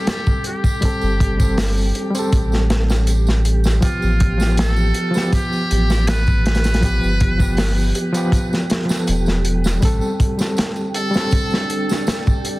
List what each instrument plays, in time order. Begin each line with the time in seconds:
Already playing: reed electric piano G3 C4 A4, synth texture G4
0.07 muted trumpet G4, snare, closed hi-hat, tambourine
0.26 kick, tambourine
0.44 muted trumpet G4, closed hi-hat
0.64 kick, tambourine
0.81 reed electric piano G3 C4, kick, closed hi-hat, tambourine
0.85 reed electric piano A4
1.01 sub bass G1, tambourine
1.20 kick, closed hi-hat
1.37 reed electric piano G3 C4, kick, tambourine
1.42 reed electric piano A4
1.58 snare, open hi-hat, tambourine
1.78 tambourine
1.95 closed hi-hat
2.10 reed electric piano G3
2.14 reed electric piano C4, closed hi-hat, tambourine
2.19 reed electric piano A4
2.32 sub bass A1, kick, closed hi-hat, tambourine
2.52 snare, tambourine
2.70 snare, closed hi-hat
2.89 snare, tambourine
3.07 closed hi-hat, tambourine
3.27 snare, tambourine
3.45 closed hi-hat
3.64 snare, tambourine
3.81 reed electric piano F3 B3, muted trumpet F4, kick, closed hi-hat, tambourine
3.85 reed electric piano G4
4.02 sub bass A1, tambourine
4.20 kick, closed hi-hat
4.38 reed electric piano F3 B3, snare, tambourine
4.42 reed electric piano G4
4.57 muted trumpet A4, snare, closed hi-hat, tambourine
4.76 tambourine
4.94 closed hi-hat
5.11 reed electric piano F3, tambourine
5.15 reed electric piano B3, snare
5.20 reed electric piano G4
5.33 muted trumpet G4, kick, closed hi-hat, tambourine
5.52 tambourine
5.71 sub bass A1, closed hi-hat
5.90 snare, tambourine
6.07 muted trumpet B4, snare, closed hi-hat, tambourine
6.27 kick, tambourine
6.46 muted trumpet B4, snare, closed hi-hat
6.55 snare, closed hi-hat
6.64 snare, closed hi-hat, tambourine
6.74 snare, closed hi-hat
6.81 reed electric piano F3 B3, kick, closed hi-hat, tambourine
6.85 reed electric piano G4
7.03 sub bass G1, tambourine
7.20 kick, closed hi-hat
7.38 reed electric piano F3 B3, kick, tambourine
7.42 reed electric piano G4
7.57 snare, open hi-hat, tambourine
7.78 tambourine
7.95 closed hi-hat
8.12 reed electric piano F3 B3, closed hi-hat, tambourine
8.17 reed electric piano G4
8.32 kick, closed hi-hat, tambourine
8.53 snare, tambourine
8.70 snare, closed hi-hat
8.85 reed electric piano F3, tambourine
8.90 reed electric piano B3, snare
8.94 reed electric piano A4
9.07 sub bass E1, closed hi-hat, tambourine
9.26 snare, tambourine
9.45 closed hi-hat
9.64 snare, tambourine
9.81 sub bass A1, reed electric piano G3 C4, ambient pad D4, kick, closed hi-hat, tambourine
9.85 reed electric piano A4
10.01 tambourine
10.20 kick, closed hi-hat
10.38 reed electric piano G3 C4, snare, tambourine
10.42 reed electric piano A4
10.57 snare, closed hi-hat, tambourine
10.76 tambourine
10.94 muted trumpet A4, closed hi-hat
11.11 reed electric piano G3, tambourine
11.15 reed electric piano C4, snare
11.20 reed electric piano A4
11.31 kick, closed hi-hat, tambourine
11.50 snare, tambourine
11.70 closed hi-hat
11.89 snare, tambourine
12.07 snare, closed hi-hat, tambourine
12.27 kick, tambourine
12.45 closed hi-hat